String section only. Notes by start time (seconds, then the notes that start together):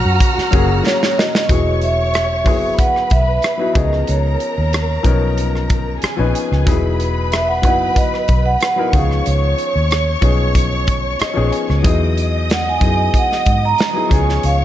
Already playing: F#4 A#5 F6
1.49 C#5 C#6
2.79 B4 B5
3.76 A#4 A#5
6.02 G#4 G#5
6.66 B4 B5
8.93 C#5 C#6
11.84 D#5 D#6
14.10 C#5 C#6